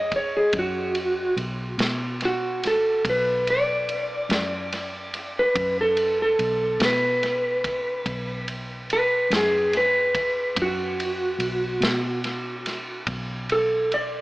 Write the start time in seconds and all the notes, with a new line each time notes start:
Already playing: F#2 D#5
0.12 kick, ride
0.16 C#5
0.37 G#4
0.53 F#2, kick, ride
0.59 F#4
0.95 ride
1.37 B1, ride
1.78 B2, snare, ride
2.21 ride
2.25 F#4
2.63 A4, snare, ride
3.05 B1, kick, ride
3.10 B4
3.47 D5, ride
3.89 ride
4.29 F#2, snare, ride
4.72 ride
5.14 ride
5.39 B4
5.55 F#2, kick, ride
5.81 A4
5.97 ride
6.22 A4
6.39 B1, ride
6.80 B2, snare, ride
6.85 B4
7.23 ride
7.64 kick, ride
8.06 B1, kick, ride
8.48 ride
8.90 B4, ride
9.30 F#2, snare, ride
9.36 G#4
9.73 ride
9.77 B4
10.15 kick, ride
10.56 F#2, kick, ride
10.62 F#4
11.00 ride
11.39 B1, ride
11.81 B2, snare, ride
12.24 ride
12.66 snare, ride
13.07 B1, kick, ride
13.49 A4, ride
13.92 D5, ride